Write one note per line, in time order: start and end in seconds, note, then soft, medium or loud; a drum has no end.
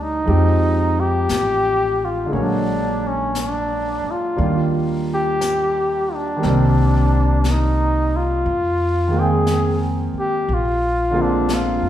0.00 0.23 D2 medium
0.00 0.27 G3 soft
0.00 0.26 A3 soft
0.00 0.27 B3 soft
0.00 1.02 D#4 medium
0.00 0.28 C#5 soft
0.00 0.30 F#5 medium
0.26 1.25 F2 medium
0.26 2.31 F3 medium
0.26 2.27 G#3 soft
0.26 2.32 C4 soft
0.26 2.32 D#4 soft
0.26 2.32 G4 medium
0.26 brush sweep soft
1.00 2.06 G4 medium
1.29 2.28 A1 medium
1.29 brush sweep soft
1.29 snare soft
1.29 hi-hat pedal medium
2.05 2.34 F4 medium
2.26 4.34 D3 soft
2.26 4.36 G#3 soft
2.32 4.00 A#1 medium
2.32 4.35 A#3 soft
2.32 2.44 C#4 medium
2.32 4.39 C#5 soft
2.32 brush sweep soft
2.37 4.40 F#3 soft
2.42 3.09 D4 medium
3.07 3.38 C#4 medium
3.35 brush sweep soft
3.35 snare soft
3.35 hi-hat pedal medium
3.42 4.12 D4 medium
4.04 muted upright bass stroke soft
4.11 4.73 F4 medium
4.37 6.39 D#2 medium
4.37 6.35 D#3 soft
4.37 6.38 G3 soft
4.37 6.40 A#3 soft
4.37 6.42 D4 soft
4.37 6.42 F4 soft
4.37 brush sweep soft
5.14 6.16 G4 medium
5.41 brush sweep soft
5.41 snare soft
5.41 hi-hat pedal medium
6.14 7.47 D4 medium
6.36 8.42 D#3 medium
6.36 8.43 G3 soft
6.42 8.42 C2 medium
6.42 8.45 A#3 soft
6.42 8.45 C4 medium
6.42 brush sweep soft
6.42 snare soft
6.47 8.47 D5 medium
7.44 7.53 D4 soft
7.44 brush sweep soft
7.44 snare soft
7.44 hi-hat pedal soft
7.51 8.18 D#4 medium
8.16 9.22 F4 medium
8.46 10.10 F2 medium
8.46 brush sweep soft
9.08 10.45 D#3 soft
9.08 10.46 G#3 soft
9.12 10.47 A#3 soft
9.12 10.49 C4 soft
9.19 9.82 G#4 medium
9.19 10.50 G5 soft
9.47 brush sweep soft
9.47 snare soft
9.47 hi-hat pedal medium
10.14 muted upright bass stroke soft
10.19 10.55 G4 medium
10.48 11.78 A#1 medium
10.48 brush sweep soft
10.54 11.23 F4 medium
11.11 11.89 D3 soft
11.11 11.89 G#3 soft
11.11 11.89 A#3 soft
11.15 11.89 C4 soft
11.15 11.89 F4 medium
11.22 11.56 D4 medium
11.49 brush sweep soft
11.49 snare soft
11.49 hi-hat pedal soft
11.54 11.89 F4 medium
11.82 11.89 F2 medium